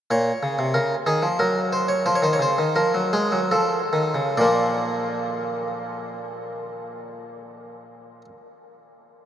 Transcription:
0.11 A#2 C#5
0.43 C#3
0.59 C3
0.74 C#3 A#4
1.06 D#3 G#4
1.22 F3
1.39 F#3 A#4
1.73 C5
1.88 C#5
2.06 F3 C5
2.15 C#5
2.22 D#3 C5
2.33 C#5
2.39 C#3 C5
2.58 D#3
2.76 F3 A#4
2.94 F#3
3.13 G#3 G#4
3.32 F#3
3.51 F3 A4
3.93 D#3
4.14 C#3
4.37 A#2 F3 A#3 D5

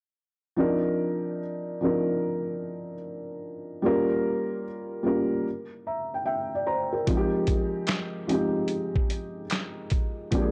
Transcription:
0.56 F3 C4 D4 D#4 A#4
1.81 F3 C4 D4 D#4 A#4
3.82 G3 A#3 C#4 F4 A#4
5.03 G3 A#3 C#4 F4 A#4
5.87 E5 A#5
6.14 G5
6.26 E5 G5
6.55 D5
6.67 C5 A#5
6.93 A#4
7.07 F3 G#3 C4 D#4 F4, kick, closed hi-hat
7.17 G4
7.47 kick, closed hi-hat
7.87 snare, clap, closed hi-hat
8.27 F3 G#3 C4 D#4 G4, closed hi-hat
8.68 closed hi-hat
8.96 kick
9.10 closed hi-hat
9.50 snare, clap, closed hi-hat
9.90 kick, closed hi-hat
10.31 F3 G#3 A#3 D4 G4, kick, closed hi-hat
10.41 G#4

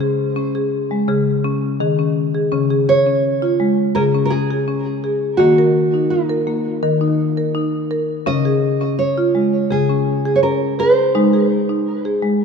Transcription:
Already playing: C#3 C5
0.00 G#4
0.36 C#4
0.55 G#4
0.91 G#3
1.08 C#3 G#4
1.44 C#4
1.80 D#3 G#4
1.99 C#4
2.35 G#4
2.52 C#3 C#4
2.70 G#4
2.89 C#5
3.07 C#4
3.42 F4
3.60 G#3
3.95 C#3 G#4 A#4
4.14 C#4
4.25 A#4
4.30 G#4
4.50 G#4
4.68 C#4
5.04 G#4
5.37 D#3 A#3 F#4
5.58 A#4
5.94 D#4
6.10 D#4
6.30 A#4
6.47 A#3
6.83 D#3 A#4
7.01 D#4
7.37 A#4
7.55 D#4
7.91 A#4
8.26 C#3 C#4 D#5
8.45 G#4
8.81 C#4
8.99 C#5
9.18 F4
9.35 G#3
9.70 C#3 G#4
9.89 C#4
10.25 G#4
10.36 C#5
10.43 C#4 A#4
10.79 G#4 C5
11.15 G#3 D#4
11.33 G#4
11.69 D#4
12.05 G#4
12.23 G#3

